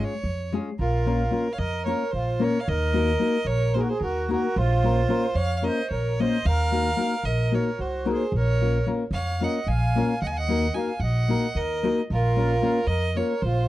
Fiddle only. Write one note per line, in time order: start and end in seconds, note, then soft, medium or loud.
0.04 0.53 C#5 medium
0.79 1.54 A#4 medium
1.53 1.60 F5 medium
1.58 1.85 D#5 loud
1.85 2.13 C#5 medium
2.11 2.45 C5 medium
2.44 2.61 C#5 medium
2.60 2.70 F5 medium
2.69 3.48 D#5 loud
3.46 3.76 C#5 loud
3.74 3.82 C5 medium
3.81 3.90 A#4 medium
3.89 4.01 C5 medium
4.01 4.29 A#4 medium
4.31 4.59 A#4 medium
4.58 5.37 C5 loud
5.36 5.57 F5 loud
5.57 5.66 F5 medium
5.64 5.90 D#5 medium
5.90 6.21 C#5 medium
6.20 6.48 D#5 loud
6.46 7.26 F5 loud
7.25 7.56 D#5 loud
7.55 7.82 C#5 medium
7.81 8.10 C5 medium
8.13 8.35 C5 medium
8.38 8.85 C#5 medium
9.13 9.45 F5 loud
9.44 9.69 F#5 medium
9.68 10.21 G#5 medium
10.22 10.28 F#5 loud
10.27 10.38 G#5 medium
10.37 10.76 F#5 loud
10.74 11.02 G#5 medium
11.00 11.58 F#5 loud
11.56 11.98 D#5 medium
12.11 12.88 A#4 loud
12.87 13.18 D#5 loud
13.17 13.43 C#5 medium
13.42 13.68 C5 medium